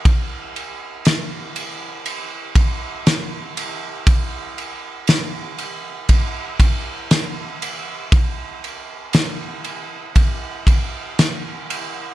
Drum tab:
RD |xxxxxxxx|xxxxxxxx|xxxxxxxx|
SD |--o---o-|--o---o-|--o---o-|
BD |o----o--|o---oo--|o---oo--|